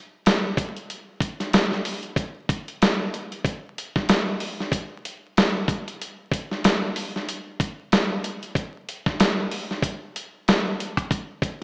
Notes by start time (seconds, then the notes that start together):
0.26 snare, closed hi-hat
0.57 kick, closed hi-hat
0.77 closed hi-hat
0.90 closed hi-hat
1.21 kick, closed hi-hat
1.40 snare, closed hi-hat
1.53 snare, closed hi-hat
1.72 snare
1.85 open hi-hat
2.03 closed hi-hat
2.16 kick, closed hi-hat
2.49 kick, closed hi-hat
2.68 closed hi-hat
2.82 snare, closed hi-hat
3.14 closed hi-hat
3.32 closed hi-hat
3.45 kick, closed hi-hat
3.78 closed hi-hat
3.96 kick, snare
4.09 snare, closed hi-hat
4.40 open hi-hat
4.60 snare
4.72 kick, closed hi-hat
5.05 closed hi-hat
5.37 snare, closed hi-hat
5.68 kick, closed hi-hat
5.88 closed hi-hat
6.01 closed hi-hat
6.32 kick, closed hi-hat
6.51 snare
6.64 snare, closed hi-hat
6.96 open hi-hat
7.16 snare
7.29 closed hi-hat
7.60 kick, closed hi-hat
7.92 snare, closed hi-hat
8.24 closed hi-hat
8.43 closed hi-hat
8.55 kick, closed hi-hat
8.89 closed hi-hat
9.06 kick, snare
9.20 snare, closed hi-hat
9.51 open hi-hat
9.71 snare
9.82 kick, closed hi-hat
10.16 closed hi-hat
10.48 snare, closed hi-hat
10.80 closed hi-hat
10.97 kick, closed hi-hat
11.11 kick, closed hi-hat
11.42 kick, closed hi-hat